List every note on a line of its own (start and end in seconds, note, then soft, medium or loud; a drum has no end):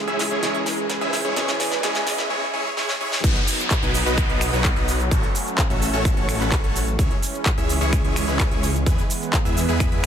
0.00 1.35 C#2 medium
0.00 1.35 C#3 medium
0.00 0.40 E3 medium
0.00 0.41 G#3 medium
0.00 2.27 G#3 medium
0.00 0.41 C#4 medium
0.00 2.27 E4 medium
0.00 0.41 G#4 loud
0.00 1.35 G#4 medium
0.00 riser medium
0.07 0.23 G#3 medium
0.07 0.23 C#4 medium
0.07 0.23 E4 medium
0.07 0.23 G#4 medium
0.07 0.23 E5 medium
0.07 closed hi-hat soft
0.19 snare medium
0.19 open hi-hat loud
0.31 0.41 G#3 medium
0.31 0.41 C#4 medium
0.31 0.41 E4 medium
0.31 0.41 G#4 medium
0.31 0.41 C#5 medium
0.31 closed hi-hat soft
0.41 1.34 E3 medium
0.41 1.34 G#3 medium
0.41 0.58 G#3 medium
0.41 0.58 C#4 medium
0.41 1.35 C#4 medium
0.41 0.58 E4 medium
0.41 0.58 G#4 medium
0.41 1.35 G#4 loud
0.41 0.58 C#5 medium
0.41 snare medium
0.41 closed hi-hat medium
0.55 closed hi-hat soft
0.66 snare medium
0.66 open hi-hat loud
0.78 closed hi-hat soft
0.90 snare medium
0.90 closed hi-hat medium
1.01 1.17 G#3 medium
1.01 1.17 C#4 medium
1.01 1.17 E4 medium
1.01 1.17 G#4 medium
1.01 1.17 E5 loud
1.01 closed hi-hat soft
1.13 snare medium
1.13 open hi-hat loud
1.25 1.35 G#3 medium
1.25 1.34 C#4 medium
1.25 1.35 E4 medium
1.25 1.35 G#4 medium
1.25 1.34 C#5 loud
1.25 closed hi-hat soft
1.35 2.29 E2 medium
1.35 2.29 B2 medium
1.35 1.81 E3 medium
1.35 1.81 G#3 medium
1.35 1.52 G#3 medium
1.35 1.52 C#4 medium
1.35 1.82 C#4 medium
1.35 1.52 E4 medium
1.35 1.52 G#4 medium
1.35 1.82 G#4 loud
1.35 2.29 B4 medium
1.35 1.52 C#5 medium
1.35 snare medium
1.35 closed hi-hat medium
1.48 snare medium
1.48 closed hi-hat soft
1.60 snare loud
1.60 open hi-hat loud
1.72 snare medium
1.82 2.28 E3 loud
1.82 2.28 G#3 medium
1.82 1.99 G#3 medium
1.82 1.99 C#4 medium
1.82 2.29 C#4 medium
1.82 1.99 E4 medium
1.82 1.99 G#4 medium
1.82 2.29 G#4 loud
1.82 1.99 C#5 medium
1.82 snare loud
1.82 closed hi-hat medium
1.95 snare medium
1.95 closed hi-hat soft
2.07 snare loud
2.07 open hi-hat loud
2.18 snare medium
2.30 2.45 G#3 medium
2.30 2.45 C#4 medium
2.30 2.45 E4 medium
2.30 2.45 G#4 medium
2.30 2.45 C#5 medium
2.53 2.69 G#3 medium
2.53 2.69 C#4 medium
2.53 2.69 E4 medium
2.53 2.69 G#4 medium
2.53 2.69 C#5 medium
2.77 2.92 G#3 medium
2.77 2.92 C#4 medium
2.77 2.92 E4 medium
2.77 2.92 G#4 medium
2.77 2.92 C#5 medium
2.77 snare medium
2.89 snare medium
3.01 3.16 G#3 medium
3.01 3.16 C#4 medium
3.01 3.16 E4 medium
3.01 3.16 G#4 medium
3.01 3.16 C#5 medium
3.12 snare medium
3.24 3.37 B1 loud
3.24 6.95 F#3 medium
3.24 5.10 B3 medium
3.24 3.39 B3 medium
3.24 5.10 D#4 medium
3.24 3.39 D#4 medium
3.24 3.39 F#4 medium
3.24 3.39 B4 medium
3.24 3.39 D#5 medium
3.24 kick loud
3.24 closed hi-hat loud
3.24 crash loud
3.24 downlifter medium
3.24 shaker soft
3.36 closed hi-hat soft
3.47 open hi-hat loud
3.47 shaker medium
3.59 closed hi-hat soft
3.59 shaker soft
3.71 kick loud
3.71 clap loud
3.71 closed hi-hat loud
3.71 shaker soft
3.82 4.04 B1 loud
3.82 3.98 B3 loud
3.82 3.98 D#4 medium
3.82 3.98 F#4 medium
3.82 3.98 B4 medium
3.82 3.98 G#5 loud
3.82 closed hi-hat soft
3.82 shaker soft
3.94 open hi-hat loud
3.94 shaker medium
4.06 4.27 B1 loud
4.06 4.27 B3 medium
4.06 4.27 D#4 medium
4.06 4.27 F#4 medium
4.06 4.27 B4 medium
4.06 4.27 D#5 loud
4.06 shaker soft
4.18 finger snap medium
4.18 kick loud
4.18 closed hi-hat loud
4.18 shaker soft
4.29 4.51 B1 loud
4.29 4.49 B3 loud
4.29 4.49 D#4 medium
4.29 4.49 F#4 medium
4.29 4.49 B4 medium
4.29 4.49 D#5 loud
4.29 closed hi-hat soft
4.41 finger snap medium
4.41 open hi-hat loud
4.41 shaker medium
4.53 4.74 B1 loud
4.53 4.74 B3 medium
4.53 4.74 D#4 medium
4.53 4.74 F#4 medium
4.53 4.73 B4 medium
4.53 4.74 C#5 loud
4.53 closed hi-hat soft
4.53 shaker soft
4.65 finger snap medium
4.65 kick loud
4.65 clap loud
4.65 closed hi-hat loud
4.65 shaker soft
4.76 5.09 B1 loud
4.76 4.92 B3 loud
4.76 4.92 D#4 medium
4.76 4.92 F#4 medium
4.76 4.92 B4 medium
4.76 4.92 D#5 loud
4.76 closed hi-hat soft
4.88 open hi-hat loud
4.88 shaker medium
5.00 closed hi-hat soft
5.00 shaker soft
5.11 5.24 A1 loud
5.11 6.97 A3 medium
5.11 5.27 A3 medium
5.11 6.97 C#4 medium
5.11 5.27 C#4 medium
5.11 5.27 F#4 medium
5.11 5.27 A4 medium
5.11 5.27 C#5 medium
5.11 kick loud
5.11 closed hi-hat loud
5.11 shaker soft
5.23 closed hi-hat soft
5.35 open hi-hat loud
5.35 shaker medium
5.47 closed hi-hat soft
5.47 shaker soft
5.58 kick loud
5.58 clap loud
5.58 closed hi-hat medium
5.58 shaker soft
5.70 5.91 A1 loud
5.70 5.85 A3 medium
5.70 5.85 C#4 medium
5.70 5.85 F#4 medium
5.70 5.85 A4 medium
5.70 5.85 E5 loud
5.70 closed hi-hat soft
5.70 shaker soft
5.82 open hi-hat loud
5.82 shaker medium
5.93 6.15 A1 loud
5.93 6.14 A3 medium
5.93 6.14 C#4 medium
5.93 6.14 F#4 medium
5.93 6.14 A4 medium
5.93 6.14 C#5 loud
5.93 closed hi-hat soft
5.93 shaker soft
6.05 finger snap medium
6.05 kick loud
6.05 closed hi-hat loud
6.05 shaker soft
6.17 6.38 A1 loud
6.17 6.37 A3 loud
6.17 6.37 C#4 medium
6.17 6.37 F#4 medium
6.17 6.37 A4 medium
6.17 6.37 C#5 loud
6.17 closed hi-hat soft
6.29 finger snap medium
6.29 open hi-hat loud
6.29 shaker medium
6.40 6.61 A1 medium
6.40 6.61 A3 medium
6.40 6.61 C#4 medium
6.40 6.61 F#4 medium
6.40 6.61 A4 medium
6.40 6.61 B4 loud
6.40 clap soft
6.40 shaker soft
6.52 finger snap medium
6.52 kick loud
6.52 clap loud
6.52 closed hi-hat loud
6.52 shaker soft
6.64 6.97 A1 loud
6.64 6.79 A3 medium
6.64 6.79 C#4 medium
6.64 6.79 F#4 medium
6.64 6.79 A4 medium
6.64 6.79 C#5 loud
6.64 closed hi-hat soft
6.76 open hi-hat loud
6.76 shaker medium
6.87 closed hi-hat soft
6.87 shaker soft
6.99 7.12 C#2 loud
6.99 8.85 E3 medium
6.99 10.06 G#3 medium
6.99 7.14 G#3 medium
6.99 8.85 C#4 medium
6.99 7.14 C#4 medium
6.99 7.14 E4 medium
6.99 7.14 G#4 medium
6.99 7.14 C#5 medium
6.99 kick loud
6.99 closed hi-hat medium
6.99 shaker soft
7.11 closed hi-hat soft
7.22 open hi-hat loud
7.22 shaker medium
7.34 closed hi-hat soft
7.34 shaker soft
7.46 kick loud
7.46 clap loud
7.46 closed hi-hat medium
7.46 shaker soft
7.58 7.79 C#2 loud
7.58 7.73 G#3 loud
7.58 7.73 C#4 medium
7.58 7.73 E4 medium
7.58 7.73 G#4 medium
7.58 7.73 E5 loud
7.58 closed hi-hat soft
7.58 shaker soft
7.69 open hi-hat loud
7.69 shaker medium
7.81 8.02 C#2 medium
7.81 8.02 G#3 medium
7.81 8.02 C#4 medium
7.81 8.02 E4 medium
7.81 8.02 G#4 medium
7.81 8.02 C#5 loud
7.81 closed hi-hat soft
7.81 shaker soft
7.93 finger snap medium
7.93 kick loud
7.93 closed hi-hat medium
7.93 shaker soft
8.04 8.25 C#2 medium
8.04 8.24 G#3 loud
8.04 8.24 C#4 medium
8.04 8.24 E4 medium
8.04 8.24 G#4 medium
8.04 8.24 C#5 loud
8.04 closed hi-hat soft
8.16 finger snap medium
8.16 open hi-hat loud
8.16 shaker medium
8.28 8.49 C#2 loud
8.28 8.48 G#3 medium
8.28 8.48 C#4 medium
8.28 8.48 E4 medium
8.28 8.48 G#4 medium
8.28 8.48 B4 loud
8.28 closed hi-hat soft
8.28 shaker soft
8.40 finger snap medium
8.40 kick loud
8.40 clap loud
8.40 closed hi-hat medium
8.40 shaker soft
8.51 8.84 C#2 loud
8.51 8.67 G#3 medium
8.51 8.67 C#4 medium
8.51 8.67 E4 medium
8.51 8.67 G#4 medium
8.51 8.67 C#5 loud
8.51 closed hi-hat soft
8.63 open hi-hat loud
8.63 shaker medium
8.75 closed hi-hat soft
8.75 shaker soft
8.86 8.99 E2 loud
8.86 10.06 E3 medium
8.86 9.02 G#3 medium
8.86 9.02 B3 medium
8.86 10.06 B3 medium
8.86 9.02 E4 medium
8.86 9.02 G#4 medium
8.86 9.02 B4 medium
8.86 kick loud
8.86 closed hi-hat loud
8.86 shaker soft
8.98 closed hi-hat soft
8.98 shaker soft
9.10 open hi-hat loud
9.10 shaker medium
9.22 closed hi-hat soft
9.22 shaker soft
9.33 kick loud
9.33 clap loud
9.33 closed hi-hat medium
9.33 shaker soft
9.45 9.66 E2 medium
9.45 9.60 G#3 medium
9.45 9.60 B3 medium
9.45 9.60 E4 medium
9.45 9.60 G#4 medium
9.45 9.60 E5 loud
9.45 closed hi-hat soft
9.45 shaker soft
9.57 open hi-hat loud
9.57 shaker medium
9.69 9.90 E2 loud
9.69 9.89 G#3 medium
9.69 9.89 B3 medium
9.69 9.89 E4 medium
9.69 9.89 G#4 medium
9.69 9.89 B4 loud
9.69 closed hi-hat soft
9.69 shaker soft
9.80 finger snap medium
9.80 kick loud
9.80 closed hi-hat medium
9.80 shaker soft
9.92 10.06 E2 loud
9.92 10.06 G#3 loud
9.92 10.06 B3 medium
9.92 10.06 E4 medium
9.92 10.06 G#4 medium
9.92 10.06 B4 loud
9.92 closed hi-hat soft